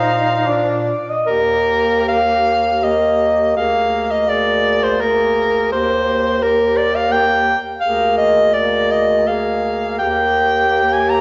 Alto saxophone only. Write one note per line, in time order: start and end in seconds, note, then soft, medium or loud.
0.00 0.51 C5 medium
0.49 1.11 D5 medium
1.10 1.28 D#5 medium
1.30 2.80 G4 medium
2.83 3.58 G4 medium
3.57 4.10 G#4 medium
4.27 4.98 G#4 medium
4.99 5.71 G#4 medium
5.73 6.41 G4 medium
6.44 7.11 G4 medium
7.14 7.57 G4 medium
7.83 8.51 G#4 medium
8.53 9.24 G#4 medium
9.25 10.01 G#4 medium
9.99 11.21 G4 medium